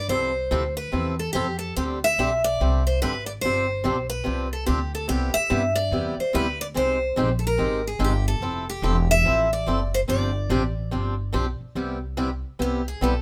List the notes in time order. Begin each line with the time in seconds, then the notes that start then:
0.09 C2 C3 F3 C4 E4 A4 C5
0.51 D2 C3 F3 C4 E4 A4
0.77 B4
0.92 E2 C3 F3 C4 E4 A4
1.19 A4
1.33 F2 C3 F3 C4 E4 G4 A4
1.59 A4
1.76 D2 D3 G3 C4 D4 G4
2.04 E5
2.18 B1 D3 G3 C4 D4 G4
2.44 D5
2.60 C2 D3 G3 C4 D4 G4
2.87 C5
3.02 G#1 D3 G3 C4 D4 G4 B4
3.26 D5
3.41 G1 C3 F3 D4 C5
3.45 C4 G4
3.84 B1 C3 F3 C4 D4 G4
4.10 B4
4.24 C2 C3 F3 C4 D4 G4
4.53 A4
4.66 D2 C3 F3 C4 D4 G4
4.95 A4
5.08 C2 C3 G3 B3 E4 G4
5.34 E5, muted upright bass stroke
5.50 G2 C3 G3 B3 E4 G4
5.75 D5
5.91 E2 C3 G3 B3 E4 G4
6.18 C5, muted upright bass stroke
6.33 D2 C3 G3 B3 E4 G4 B4
6.61 D5
6.74 C2 C3 G#3 C4 D#4 G4 C5
7.16 A#1 C3 G#3 C4 D#4 G4
7.39 A4
7.47 A#4
7.57 G#1 C3 G#3 C4 D#4 G4
7.87 G#4
7.99 G1 C3 G#3 C4 D#4 G4
8.04 G4
8.28 A4
8.41 F1 F3 C4 E4 A4
8.70 G4
8.82 E1 F3 C4 E4 A4
9.11 E5
9.25 A1 F3 C4 E4 A4
9.53 D5
9.67 F#1 F3 C4 E4 A4
9.94 C5
10.08 G1 C3 F3 C4 D4 G4 D5
10.50 A1 C3 F3 C4 D4 G4
10.91 G1 C3 F3 C4 D4 G4
11.33 B1 C3 F3 C4 D4 G4
11.61 muted upright bass stroke
11.75 C2 C3 G3 B3 E4 G4
12.17 C3 G3 B3 E4 G4
12.59 C2 C3 G3 B3 E4 G4
12.88 G#4
13.01 B1 C3 G3 B3 E4 G4 A4